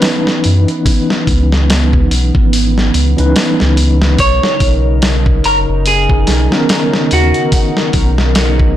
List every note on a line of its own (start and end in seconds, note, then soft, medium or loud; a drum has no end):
0.00 3.12 E3 medium
0.00 4.15 B3 medium
0.00 3.13 C#4 medium
0.00 3.13 D#4 medium
0.00 3.13 B4 medium
0.00 snare loud
0.00 open hi-hat medium
0.27 snare soft
0.44 0.66 F#2 medium
0.44 open hi-hat medium
0.68 closed hi-hat soft
0.86 kick loud
0.86 open hi-hat medium
1.10 snare soft
1.27 2.08 C#2 medium
1.27 kick loud
1.27 open hi-hat medium
1.52 snare soft
1.70 snare loud
1.70 open hi-hat medium
1.93 kick medium
2.11 2.32 B1 medium
2.11 open hi-hat medium
2.35 2.91 G#1 medium
2.35 kick loud
2.53 open hi-hat medium
2.78 snare soft
2.94 3.15 C#2 medium
2.94 open hi-hat medium
3.17 3.34 C#2 medium
3.17 4.17 E3 medium
3.17 4.17 C#4 medium
3.17 4.17 D#4 medium
3.17 4.18 B4 medium
3.17 closed hi-hat soft
3.36 snare loud
3.36 open hi-hat medium
3.60 4.17 C#2 medium
3.60 snare soft
3.77 open hi-hat medium
4.02 snare medium
4.18 4.40 B1 loud
4.18 8.77 C#3 medium
4.18 8.77 D#4 medium
4.18 8.77 A#4 medium
4.18 5.45 C#5 loud
4.18 kick loud
4.18 open hi-hat medium
4.43 snare medium
4.60 5.41 B1 medium
4.60 kick medium
4.60 open hi-hat medium
5.02 snare loud
5.02 open hi-hat medium
5.26 kick loud
5.44 5.66 F#1 medium
5.44 5.57 A#4 loud
5.44 open hi-hat medium
5.69 6.25 F#1 medium
5.86 7.13 G#4 loud
5.86 open hi-hat medium
6.09 kick medium
6.27 6.49 B1 medium
6.27 snare soft
6.27 open hi-hat medium
6.51 8.77 D#3 medium
6.51 8.77 B3 medium
6.51 8.77 C#4 medium
6.51 8.77 A#4 medium
6.51 snare medium
6.69 snare loud
6.69 open hi-hat medium
6.93 snare soft
7.11 7.33 D#2 medium
7.11 8.77 F#4 medium
7.11 open hi-hat medium
7.34 closed hi-hat soft
7.52 kick loud
7.52 open hi-hat medium
7.77 snare soft
7.93 8.74 B1 medium
7.93 kick medium
7.93 open hi-hat medium
8.18 snare soft
8.35 snare loud
8.35 open hi-hat medium
8.59 kick medium